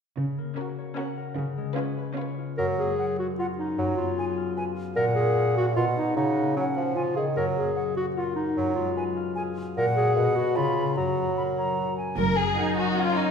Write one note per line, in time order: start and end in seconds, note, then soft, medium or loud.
0.17 0.49 C#3 soft
0.17 1.37 C#3 soft
0.38 1.39 A#3 soft
0.57 0.87 C#4 soft
0.57 0.87 F#4 soft
0.57 1.39 F#4 soft
0.57 0.87 A#4 soft
0.79 2.17 C#5 soft
0.96 1.26 C#4 soft
0.96 1.26 F#4 soft
0.96 1.27 A#4 soft
0.96 1.39 F#5 soft
1.17 1.39 A#4 soft
1.37 1.68 C#3 medium
1.37 2.59 C#3 medium
1.58 2.59 G#3 soft
1.76 2.07 C#4 soft
1.76 3.57 C#4 soft
1.76 2.07 F4 soft
1.76 2.06 B4 medium
1.98 2.59 B4 soft
2.16 2.47 C#4 soft
2.16 2.47 F4 soft
2.16 2.47 B4 soft
2.16 3.17 C#5 soft
2.38 2.59 F4 soft
2.57 3.77 F#2 soft
2.57 2.91 F#3 medium
2.57 2.66 A#4 medium
2.78 3.79 A#3 soft
2.78 3.17 G#4 medium
2.98 3.79 F#4 soft
2.98 3.06 F#5 soft
3.19 3.27 F#4 medium
3.19 3.79 C#5 soft
3.38 3.47 F4 soft
3.38 3.79 A#4 soft
3.38 3.46 F#5 soft
3.58 3.79 C#4 soft
3.58 3.96 D#4 soft
3.78 4.98 F#2 soft
3.78 4.11 F#3 medium
3.96 4.98 B3 soft
3.96 4.75 F4 medium
4.17 4.98 G#4 soft
4.17 4.26 G#5 soft
4.37 4.98 F5 soft
4.57 4.98 B4 soft
4.57 4.64 G#5 soft
4.76 4.98 F4 soft
4.96 5.77 A#2 medium
4.96 5.78 A#2 medium
4.96 5.05 A#4 medium
4.96 5.72 F#5 medium
5.15 5.78 C#4 soft
5.15 5.55 G#4 medium
5.36 5.78 A#4 soft
5.56 5.66 F#4 medium
5.56 6.75 F#5 soft
5.76 6.16 B2 soft
5.76 6.18 B2 soft
5.76 5.85 F4 medium
5.76 6.15 F#5 soft
5.96 6.16 D#4 medium
5.96 6.98 F#4 soft
5.96 6.18 G#4 soft
6.16 6.52 C#3 soft
6.16 6.95 C#3 soft
6.16 6.58 D#4 medium
6.16 6.56 F#5 soft
6.36 6.98 A#3 soft
6.56 6.66 F#3 medium
6.56 6.97 C#4 soft
6.56 7.16 C#5 soft
6.56 6.96 F#5 soft
6.76 7.19 F3 soft
6.76 6.98 F#5 soft
6.95 7.38 C#3 soft
6.95 7.15 F4 soft
6.95 7.02 G#5 soft
7.16 7.37 D#3 soft
7.16 7.25 G#4 soft
7.16 7.38 G#4 soft
7.16 7.76 C#5 soft
7.36 8.56 F#2 soft
7.36 7.70 F#3 soft
7.36 7.45 A#4 medium
7.56 8.58 A#3 soft
7.56 7.96 G#4 soft
7.76 8.59 C#5 soft
7.76 7.83 F#5 soft
7.97 8.06 F#4 medium
7.97 8.59 F#5 soft
8.16 8.35 F4 medium
8.16 8.59 A#4 soft
8.16 8.24 F#5 soft
8.36 8.75 D#4 medium
8.36 8.59 F#4 soft
8.57 9.78 F#2 soft
8.57 8.90 F#3 medium
8.75 9.78 G#3 soft
8.75 9.54 F4 medium
8.97 9.78 B4 soft
8.97 9.04 G#5 soft
9.17 9.78 F5 soft
9.35 9.78 G#4 soft
9.35 9.43 G#5 soft
9.57 9.78 F4 soft
9.76 10.18 A#2 medium
9.76 9.85 A#4 medium
9.76 10.13 F#5 medium
9.96 10.35 F#4 soft
9.96 10.37 G#4 medium
9.96 10.18 C#5 soft
10.16 10.58 B2 medium
10.16 10.57 F#5 medium
10.35 10.58 F#4 medium
10.35 10.58 F#4 soft
10.35 10.76 B4 soft
10.56 10.96 C#3 soft
10.56 10.98 C#3 medium
10.56 10.96 F4 medium
10.56 10.95 B5 soft
10.77 11.96 C#4 soft
10.77 10.99 B4 soft
10.96 12.17 F#2 soft
10.96 11.96 F#3 soft
10.96 11.96 F#4 soft
10.96 11.32 A#5 soft
11.18 12.36 F#3 soft
11.37 12.56 A#4 soft
11.37 11.43 B5 soft
11.58 12.76 C#5 soft
11.58 11.97 A#5 soft
11.78 12.96 F#4 soft
11.98 13.17 C#4 soft
11.98 12.17 G#5 soft
12.17 12.49 F#1 medium
12.17 12.49 F#2 medium
12.17 13.31 F#2 soft
12.17 12.36 A#4 medium
12.38 13.31 F#3 soft
12.38 12.78 G#4 medium
12.56 12.94 D#4 medium
12.56 13.31 A#4 soft
12.56 12.87 F#5 soft
12.77 12.97 F#4 medium
12.77 13.31 C#5 soft
12.97 13.31 C#4 medium
12.97 13.17 F4 medium
12.97 13.31 F#4 soft
12.97 13.27 F#5 soft
13.17 13.31 C#4 soft
13.17 13.31 D#4 medium